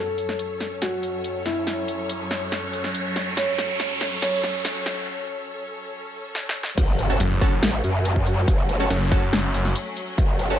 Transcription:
0.00 6.74 F#2 medium
0.00 6.74 F#3 medium
0.00 6.74 C#4 medium
0.00 0.73 A4 medium
0.00 6.74 A4 medium
0.00 6.74 C#5 medium
0.00 riser medium
0.18 closed hi-hat medium
0.29 snare soft
0.39 closed hi-hat medium
0.61 snare soft
0.61 open hi-hat medium
0.82 1.37 F#4 medium
0.82 snare medium
0.82 closed hi-hat medium
1.03 closed hi-hat medium
1.24 closed hi-hat medium
1.46 3.29 E4 medium
1.46 snare medium
1.46 closed hi-hat medium
1.67 snare medium
1.67 closed hi-hat medium
1.88 closed hi-hat medium
2.10 closed hi-hat medium
2.31 snare medium
2.31 open hi-hat medium
2.52 snare medium
2.52 closed hi-hat medium
2.73 closed hi-hat medium
2.84 snare medium
2.95 closed hi-hat medium
3.16 snare medium
3.16 closed hi-hat medium
3.37 4.14 C#5 medium
3.37 snare medium
3.37 closed hi-hat medium
3.58 snare medium
3.58 closed hi-hat medium
3.80 snare medium
3.80 closed hi-hat medium
4.01 snare medium
4.01 open hi-hat medium
4.22 4.99 C#5 medium
4.22 snare medium
4.22 closed hi-hat medium
4.44 snare medium
4.44 closed hi-hat medium
4.65 snare medium
4.65 closed hi-hat medium
4.86 snare medium
4.86 closed hi-hat medium
6.35 snare medium
6.49 snare medium
6.63 snare loud
6.78 7.18 F#1 loud
6.78 10.59 F#3 medium
6.78 10.59 A3 medium
6.78 10.59 C#4 medium
6.78 kick loud
6.78 closed hi-hat medium
6.78 crash loud
6.78 impact medium
6.99 closed hi-hat medium
7.10 7.16 C#4 medium
7.10 7.16 F#4 medium
7.10 7.16 A4 loud
7.20 7.61 F#1 loud
7.20 closed hi-hat medium
7.41 7.52 C#4 medium
7.41 7.52 F#4 medium
7.41 7.52 A4 loud
7.41 kick loud
7.41 open hi-hat medium
7.63 7.82 A1 medium
7.63 snare loud
7.63 closed hi-hat medium
7.84 8.46 F#2 medium
7.84 closed hi-hat medium
8.05 closed hi-hat medium
8.16 kick medium
8.27 closed hi-hat medium
8.48 8.89 F#1 loud
8.48 kick loud
8.48 closed hi-hat medium
8.69 closed hi-hat medium
8.80 8.86 C#4 medium
8.80 8.86 F#4 medium
8.80 8.86 A4 loud
8.90 9.53 F#1 loud
8.90 closed hi-hat medium
9.12 10.48 C#4 medium
9.12 10.48 F#4 medium
9.12 10.48 A4 loud
9.12 kick loud
9.12 open hi-hat medium
9.33 snare loud
9.33 closed hi-hat medium
9.54 9.74 F#1 loud
9.54 closed hi-hat medium
9.65 snare soft
9.76 closed hi-hat medium
9.97 closed hi-hat medium
10.18 10.59 F#1 loud
10.18 kick loud
10.18 closed hi-hat medium
10.39 closed hi-hat medium
10.50 10.56 C#4 medium
10.50 10.56 F#4 medium
10.50 10.56 A4 loud

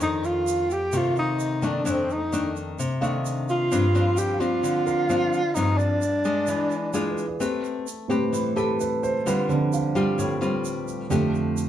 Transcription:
0.00 0.91 F2 medium
0.00 0.66 D#3 medium
0.00 0.67 A3 medium
0.00 0.67 D4 medium
0.00 0.27 D#4 medium
0.00 0.17 C5 soft
0.00 0.31 D5 soft
0.00 0.23 D#5 medium
0.00 shaker medium
0.24 0.74 F4 medium
0.24 0.71 F5 medium
0.24 shaker soft
0.47 shaker medium
0.70 0.98 G4 medium
0.70 0.94 G5 medium
0.70 shaker soft
0.92 1.83 C3 medium
0.92 1.59 D#3 medium
0.92 1.59 A3 medium
0.92 2.34 C5 medium
0.92 1.17 F5 medium
0.92 shaker medium
0.97 1.18 F4 loud
1.11 2.49 F5 soft
1.16 1.68 D#4 medium
1.16 1.60 D#5 medium
1.16 shaker soft
1.40 shaker soft
1.62 1.82 D#3 medium
1.62 1.82 A3 medium
1.62 1.83 D4 medium
1.62 1.86 D5 medium
1.62 shaker soft
1.67 1.92 D4 medium
1.85 2.76 F2 medium
1.85 2.15 D#3 medium
1.85 2.15 A3 medium
1.85 2.16 D4 soft
1.85 2.10 C5 medium
1.85 shaker medium
1.90 2.14 C4 medium
2.10 2.57 D#4 medium
2.10 2.56 D#5 medium
2.10 shaker soft
2.32 2.78 D#3 medium
2.32 2.78 A3 medium
2.32 2.79 D4 medium
2.32 shaker medium
2.56 shaker soft
2.79 3.69 C3 medium
2.79 shaker medium
3.01 3.67 D#3 medium
3.01 3.67 A3 medium
3.01 3.67 D4 medium
3.01 3.90 F5 medium
3.01 shaker soft
3.26 shaker medium
3.49 4.20 F4 loud
3.49 4.13 F5 medium
3.49 shaker soft
3.71 4.61 G2 medium
3.71 3.85 F3 soft
3.71 3.85 C4 medium
3.71 3.85 D4 medium
3.71 shaker medium
3.95 4.37 F3 medium
3.95 4.37 C4 medium
3.95 4.37 D4 medium
3.95 shaker soft
4.16 4.42 G4 medium
4.16 5.57 D5 soft
4.16 4.39 G5 medium
4.16 shaker medium
4.33 5.71 F5 soft
4.39 5.06 F3 medium
4.39 5.06 C4 medium
4.39 5.06 D4 medium
4.39 5.56 F4 medium
4.39 5.55 F5 loud
4.39 shaker soft
4.63 5.53 D3 medium
4.63 shaker medium
4.86 6.27 A#4 medium
4.86 shaker soft
5.09 5.39 F3 medium
5.09 5.40 C4 medium
5.09 5.40 D4 medium
5.09 shaker medium
5.33 shaker soft
5.53 6.46 G2 medium
5.53 6.02 F3 soft
5.53 6.02 C4 soft
5.53 6.02 D4 medium
5.53 5.79 D#4 medium
5.53 5.78 D#5 medium
5.53 shaker medium
5.76 7.17 D4 medium
5.76 7.16 D5 medium
5.76 shaker soft
6.02 shaker medium
6.25 6.91 G#3 medium
6.25 6.91 D4 medium
6.25 shaker soft
6.47 7.38 E3 medium
6.47 shaker medium
6.71 shaker soft
6.93 7.25 G#3 medium
6.93 7.25 D4 medium
6.93 7.25 F4 medium
6.93 7.37 G#4 medium
6.93 shaker medium
7.10 7.73 B4 soft
7.18 shaker soft
7.28 7.88 D5 soft
7.40 8.30 A3 medium
7.40 7.86 C4 soft
7.40 7.86 G4 soft
7.40 7.86 B4 medium
7.40 shaker medium
7.64 shaker soft
7.87 shaker medium
8.08 8.75 A2 soft
8.08 8.75 G3 soft
8.08 8.75 C4 soft
8.08 8.52 C4 medium
8.08 8.52 G4 medium
8.08 8.53 B4 medium
8.08 shaker soft
8.33 9.23 E3 medium
8.33 shaker medium
8.56 9.22 C4 soft
8.56 9.22 G4 medium
8.56 8.79 A4 medium
8.56 9.22 B4 medium
8.56 shaker soft
8.80 9.02 B4 medium
8.80 shaker medium
9.03 9.25 C5 medium
9.03 shaker soft
9.26 10.16 D3 medium
9.26 9.91 G3 medium
9.26 9.92 C4 soft
9.26 9.92 F4 soft
9.26 9.49 B4 medium
9.26 shaker medium
9.48 10.14 D3 soft
9.48 10.15 F3 soft
9.48 10.15 C4 soft
9.48 9.71 D4 soft
9.48 shaker soft
9.73 9.95 F4 medium
9.73 shaker medium
9.95 10.37 G3 medium
9.95 10.37 C4 medium
9.95 10.38 F4 medium
9.95 10.61 G4 medium
9.95 shaker soft
10.19 11.08 A2 medium
10.19 shaker medium
10.41 11.06 G3 medium
10.41 11.07 C4 medium
10.41 11.07 F4 medium
10.41 shaker soft
10.65 shaker medium
10.88 shaker soft
11.10 11.69 F2 soft
11.10 11.69 D3 soft
11.10 11.69 F3 medium
11.10 11.69 A3 soft
11.10 11.69 D4 medium
11.10 11.69 G4 medium
11.10 shaker medium
11.35 shaker soft
11.57 shaker medium

